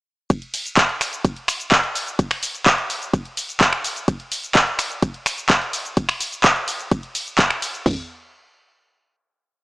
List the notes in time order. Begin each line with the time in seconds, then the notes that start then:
0.30 kick, closed hi-hat, ride, shaker
0.42 closed hi-hat
0.54 open hi-hat, ride, shaker
0.66 closed hi-hat, shaker
0.77 kick, clap, closed hi-hat, ride, shaker
0.89 closed hi-hat
1.01 finger snap, open hi-hat, ride, shaker
1.13 closed hi-hat, shaker
1.25 kick, closed hi-hat, ride, shaker
1.36 closed hi-hat
1.48 finger snap, open hi-hat, ride, shaker
1.60 closed hi-hat, shaker
1.72 kick, clap, closed hi-hat, ride, shaker
1.84 closed hi-hat
1.95 open hi-hat, ride, shaker
2.07 closed hi-hat, shaker
2.19 kick, closed hi-hat, ride, shaker
2.31 finger snap, open hi-hat
2.43 open hi-hat, ride, shaker
2.54 closed hi-hat, shaker
2.66 kick, clap, closed hi-hat, ride, shaker
2.78 closed hi-hat
2.90 open hi-hat, ride, shaker
3.02 closed hi-hat, shaker
3.13 kick, closed hi-hat, ride, shaker
3.25 closed hi-hat
3.37 open hi-hat, ride, shaker
3.49 closed hi-hat, shaker
3.61 kick, clap, closed hi-hat, ride, shaker
3.73 finger snap, closed hi-hat
3.84 open hi-hat, ride, shaker
3.96 closed hi-hat, shaker
4.08 kick, closed hi-hat, ride, shaker
4.20 closed hi-hat
4.32 open hi-hat, ride, shaker
4.43 closed hi-hat, shaker
4.55 kick, clap, closed hi-hat, ride, shaker
4.67 closed hi-hat
4.79 finger snap, open hi-hat, ride, shaker
4.91 closed hi-hat, shaker
5.02 kick, closed hi-hat, ride, shaker
5.14 closed hi-hat
5.26 finger snap, open hi-hat, ride, shaker
5.38 closed hi-hat, shaker
5.50 kick, clap, closed hi-hat, ride, shaker
5.62 closed hi-hat
5.73 open hi-hat, ride, shaker
5.85 closed hi-hat, shaker
5.97 kick, closed hi-hat, ride, shaker
6.09 finger snap, open hi-hat
6.21 open hi-hat, ride, shaker
6.32 closed hi-hat, shaker
6.44 kick, clap, closed hi-hat, ride, shaker
6.56 closed hi-hat
6.68 open hi-hat, ride, shaker
6.80 closed hi-hat, shaker
6.91 kick, closed hi-hat, ride, shaker
7.03 closed hi-hat
7.15 open hi-hat, ride, shaker
7.27 closed hi-hat, shaker
7.39 kick, clap, closed hi-hat, ride, shaker
7.50 finger snap, closed hi-hat
7.62 open hi-hat, ride, shaker
7.74 closed hi-hat, shaker
7.86 kick, floor tom, open hi-hat